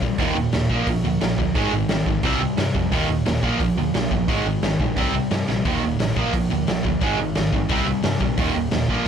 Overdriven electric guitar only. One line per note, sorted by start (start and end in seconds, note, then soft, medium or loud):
0.19 0.35 D#2 medium
0.19 0.36 A#2 loud
0.19 0.36 D#3 loud
0.37 0.52 D#2 medium
0.37 0.52 A#2 medium
0.54 0.69 D#2 medium
0.54 0.69 A#2 medium
0.70 0.86 A#2 medium
0.70 0.87 F3 medium
0.70 0.87 A#3 loud
0.88 1.03 A#2 medium
0.88 1.04 F3 medium
1.05 1.20 A#2 medium
1.05 1.20 F3 medium
1.21 1.37 A#2 medium
1.21 1.37 F3 medium
1.38 1.54 A#2 medium
1.38 1.54 F3 medium
1.55 1.71 G#2 medium
1.55 1.71 D#3 loud
1.55 1.72 G#3 loud
1.72 1.88 G#2 medium
1.72 1.88 D#3 medium
1.89 2.05 G#2 medium
1.89 2.05 D#3 medium
2.06 2.22 G#2 medium
2.06 2.22 D#3 medium
2.23 2.39 C3 medium
2.23 2.39 G3 loud
2.23 2.40 C4 loud
2.40 2.56 C3 medium
2.40 2.56 G3 medium
2.57 2.73 C3 medium
2.57 2.73 G3 loud
2.75 2.91 C3 medium
2.75 2.91 G3 medium
2.92 3.08 D#2 loud
2.92 3.08 A#2 medium
2.92 3.09 D#3 loud
3.09 3.25 D#2 medium
3.09 3.25 A#2 medium
3.26 3.42 D#2 medium
3.26 3.42 A#2 medium
3.43 3.59 A#2 medium
3.43 3.59 F3 medium
3.43 3.60 A#3 loud
3.60 3.76 A#2 medium
3.60 3.76 F3 medium
3.78 3.93 A#2 medium
3.78 3.93 F3 medium
3.94 4.10 A#2 medium
3.94 4.10 F3 medium
4.12 4.27 A#2 medium
4.12 4.28 F3 medium
4.28 4.44 G#2 medium
4.28 4.45 D#3 loud
4.28 4.45 G#3 loud
4.46 4.61 G#2 medium
4.46 4.61 D#3 medium
4.63 4.79 G#2 medium
4.63 4.79 D#3 medium
4.80 4.96 G#2 medium
4.80 4.96 D#3 medium
4.96 5.13 C3 medium
4.96 5.13 G3 loud
4.96 5.14 C4 medium
5.14 5.30 C3 medium
5.14 5.30 G3 medium
5.32 5.47 C3 medium
5.32 5.47 G3 medium
5.49 5.64 C3 medium
5.49 5.64 G3 medium
5.66 5.82 D#2 medium
5.66 5.82 A#2 medium
5.66 5.83 D#3 loud
5.83 5.98 D#2 medium
5.83 5.99 A#2 medium
6.01 6.16 D#2 medium
6.01 6.16 A#2 medium
6.17 6.33 A#2 medium
6.17 6.33 F3 medium
6.17 6.34 A#3 medium
6.34 6.50 A#2 medium
6.34 6.50 F3 medium
6.51 6.67 A#2 medium
6.51 6.67 F3 medium
6.68 6.84 A#2 medium
6.68 6.84 F3 loud
6.86 7.01 A#2 medium
6.86 7.01 F3 medium
7.02 7.18 G#2 medium
7.02 7.19 D#3 loud
7.02 7.19 G#3 loud
7.20 7.35 G#2 medium
7.20 7.35 D#3 medium
7.36 7.52 G#2 medium
7.36 7.52 D#3 medium
7.53 7.69 G#2 medium
7.53 7.69 D#3 medium
7.71 7.86 C3 medium
7.71 7.87 G3 medium
7.71 7.87 C4 loud
7.87 8.03 C3 medium
7.87 8.03 G3 medium
8.05 8.20 C3 medium
8.05 8.20 G3 medium
8.22 8.37 C3 medium
8.22 8.37 G3 medium
8.38 8.54 D#2 medium
8.38 8.55 A#2 loud
8.38 8.56 D#3 loud
8.55 8.71 D#2 medium
8.55 8.71 A#2 medium
8.73 8.89 D#2 medium
8.73 8.88 A#2 medium
8.90 9.06 A#2 medium
8.90 9.06 F3 medium
8.90 9.07 A#3 medium